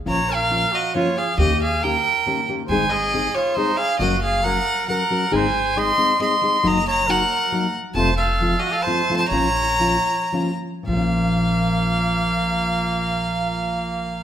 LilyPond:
<<
  \new Staff \with { instrumentName = "Violin" } { \time 3/4 \key bes \minor \tempo 4 = 136 bes''8 f''4 ees''8 des''8 f''8 | ees''8 f''8 g''4. r8 | aes''8 ees''4 des''8 c''8 f''8 | ees''8 f''8 ges''4 ges''4 |
aes''4 c'''4 c'''4 | bes''8 bes''8 ges''4. r8 | a''8 f''4 ees''16 f''16 a''8. a''16 | bes''2~ bes''8 r8 |
f''2.~ | f''2. | }
  \new Staff \with { instrumentName = "Trumpet" } { \time 3/4 \key bes \minor des''8 bes'4 ges'8 f'8 aes'8 | g'8 aes'8 bes'4. r8 | c''8 aes'4 f'8 ees'8 aes'8 | ges'8 aes'8 bes'4 bes'4 |
c''4 ees''4 ees''4 | ees''8 des''8 bes'4. r8 | c''8 a'4 ges'16 a'16 c''8. c''16 | des''2~ des''8 r8 |
bes2.~ | bes2. | }
  \new Staff \with { instrumentName = "Nylon-string guitar" } { \time 3/4 \key bes \minor <bes, f bes des' f'>8 r8 <f bes des' f'>8 r8 <f bes des' f'>8 r8 | <ees bes des' g'>8 r8 <ees bes des' g'>8 r8 <ees bes des' g'>8 <ees bes des' g'>8 | <aes, ees aes c' ees' aes'>8 r8 <aes c' ees' aes'>8 r8 <aes c' ees' aes'>8 r8 | <ges des' ges' bes'>8 r8 <ges des' ges' bes'>8 r8 <ges des' ges' bes'>8 <ges des' ges' bes'>8 |
<aes, ees aes c' ees' aes'>8 r8 <aes c' ees' aes'>8 <aes c' ees' aes'>8 <aes c' ees' aes'>8 <aes c' ees' aes'>8 | <ges bes ees' ges'>8 r8 <ges bes ees' ges'>8 r8 <ges bes ees' ges'>8 r8 | <f, c f a c' f'>8 r8 <f a c' f'>8 r8 <f a c' f'>8 <f a c' f'>8 | <bes, f bes des' f'>8 r8 <f bes des' f'>8 r8 <f bes des' f'>8 r8 |
<bes, f bes des' f'>2.~ | <bes, f bes des' f'>2. | }
  \new Staff \with { instrumentName = "Upright bass" } { \clef bass \time 3/4 \key bes \minor bes,,2 r4 | ees,2 r4 | aes,,2 r4 | ges,,2 r4 |
aes,,2 r4 | ges,,2 r4 | f,,2 r4 | bes,,2 r4 |
bes,,2.~ | bes,,2. | }
>>